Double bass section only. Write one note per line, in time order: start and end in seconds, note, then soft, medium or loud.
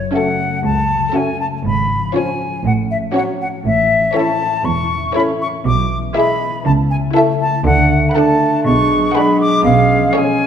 0.64 1.04 C#2 medium
1.64 2.04 G#1 medium
2.65 3.05 A1 medium
3.66 4.06 A1 medium
4.66 5.05 E1 medium
5.66 6.05 B1 medium
6.66 7.05 C#2 medium
7.66 8.05 D2 medium
8.66 9.05 B1 medium
9.64 10.04 B1 medium